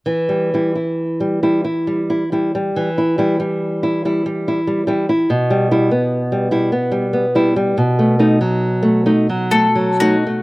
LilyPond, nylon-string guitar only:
\new Staff \with { instrumentName = "Nylon-string guitar" } { \time 3/4 \key e \minor \tempo 4 = 70 e16 g16 <g e'>16 e'8 g16 <g e'>16 e'16 g16 e'16 <g e'>16 g16 | e16 e'16 <g e'>16 g8 e'16 <g e'>16 g16 e'16 g16 <g e'>16 e'16 | b,16 g16 <g e'>16 b8 g16 <g e'>16 b16 g16 b16 <g e'>16 g16 | b,16 a16 <a dis'>16 fis8 a16 <a dis'>16 fis16 a16 fis16 <a dis'>16 a16 | }